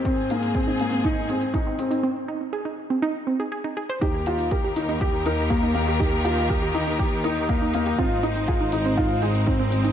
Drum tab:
HH |x-xxx-xxx-xxx-xx|----------------|x-xxx-xxx-xxx-xx|x-xxx-xxx-xxx-xx|
BD |o---o---o---o---|----------------|o---o---o---o---|o---o---o---o---|

HH |x-xxx-xxx-xxx-xx|
BD |o---o---o---o---|